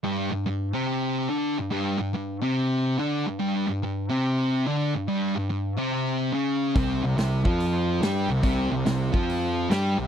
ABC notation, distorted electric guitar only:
X:1
M:4/4
L:1/8
Q:"Swing" 1/4=143
K:C
V:1 name="Distorted electric guitar" clef=bass
[G,,G,] G,, G,, [C,C]3 [D,D] G,, | [G,,G,] G,, G,, [C,C]3 [D,D] G,, | [G,,G,] G,, G,, [C,C]3 [D,D] G,, | [G,,G,] G,, G,, [C,C]3 [^C,^C]2 |
[C,C] C, C, [F,F]3 [G,G] C, | [C,C] C, C, [F,F]3 [G,G] C, |]